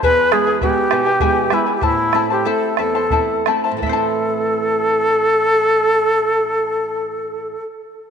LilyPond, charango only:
\new Staff \with { instrumentName = "Charango" } { \time 6/8 \key a \minor \tempo 4. = 55 <e' gis' b' e'' gis''>8 <e' b' e'' gis''>16 <e' b' gis''>16 <e' b' e'' gis''>8 <e' b' e'' gis''>16 <e' b' gis''>16 <e' gis' b' e'' gis''>8 <e' b' e'' gis''>16 <e' b' gis''>16 | <e' c'' e'' a''>8 <e' c'' e'' a''>16 <e' c'' a''>16 <e' a' c'' e'' a''>8 <e' c'' e'' a''>16 <e' c'' a''>16 <e' c'' e'' a''>8 <e' c'' e'' a''>16 <e' c'' a''>16 | <e' a' c'' e'' a''>2.~ | <e' a' c'' e'' a''>2. | }